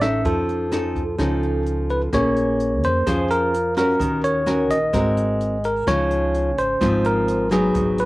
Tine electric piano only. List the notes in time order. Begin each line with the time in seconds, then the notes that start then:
0.02 E5
0.26 A4
1.90 B4
2.14 C#5
2.85 C5
3.31 A#4
3.78 A#4
4.24 C#5
4.71 D#5
5.65 A#4
5.88 C#5
6.59 C5
7.06 A#4
7.53 G#4
8.00 B4